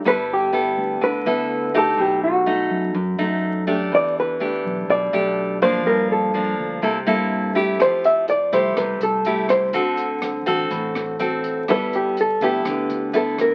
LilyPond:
<<
  \new Staff \with { instrumentName = "Hollow-body jazz guitar" } { \time 4/4 \key g \major \tempo 4 = 124 b'8 g'4. b'4. a'8 | g'8 fis'2. r8 | d''8 b'4. d''4. c''8 | bes'8 a'2. r8 |
c''8 e''8 d''8 c''8 b'8 a'4 c''8~ | c''2.~ c''8 r8 | b'8 g'8 a'8 g'4. a'8 bes'8 | }
  \new Staff \with { instrumentName = "Nylon-string guitar" } { \time 4/4 \key g \major << { <b e' a'>4 <b e' a'>4. <b e' a'>4 <a ees' g'>8~ | <a ees' g'>4 <a dis'>4 r8 <a dis'>4 <a d' g'>8~ | <a d' g'>4 <a d' g'>4. <a d' g'>4 <f bes d'>8~ | <f bes d'>4 <f bes d'>4 <bes e' a'>8 <bes e' a'>4 <a e' g'>8~ |
<a e' g'>4 r8 <a e' g'>4. <a e' g'>4 | <c' fis' a'>4. <c' fis' a'>4. <c' fis' a'>4 | <b e' a'>4 r8 <b e' a'>4. <b e' a'>4 | } \\ { g2 d2 | b,2 fis,2 | e2 b,2 | g,2 c2 |
f2 c2 | d2 a,2 | g2 d2 | } >> }
  \new Staff \with { instrumentName = "Fingered electric bass" } { \clef bass \time 4/4 \key g \major g,,4. d,8 d,8 d,4. | b,,4. fis,8 fis,8 fis,4. | e,4. b,,8 b,,8 b,,4. | g,4. d,8 c,8 g,4. |
f,4. c,8 c,8 c,4. | d,4. a,,8 a,,8 a,,4. | g,,4. d,8 d,8 d,4. | }
  \new DrumStaff \with { instrumentName = "Drums" } \drummode { \time 4/4 r4 r4 r4 r4 | r4 r4 r4 r4 | r4 r4 r4 r4 | r4 r4 r4 r4 |
<hh bd ss>8 hh8 hh8 <hh bd>8 <hh bd ss>8 hh8 hh8 <hh bd ss>8 | <hh bd>8 hh8 <hh ss>8 <hh bd>8 <hh bd>8 <hh ss>8 hh8 <hh bd>8 | <hh bd ss>8 hh8 hh8 <hh bd>8 <hh bd ss>8 hh8 hh8 <hh bd ss>8 | }
>>